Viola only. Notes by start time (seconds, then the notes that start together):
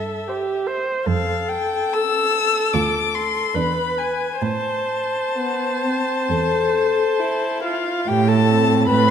Already playing: A4
0.28 G4
0.67 C5
1.06 A4
3.55 B4
4.41 C5
7.65 F4
8.08 G4
8.28 A4
8.90 B4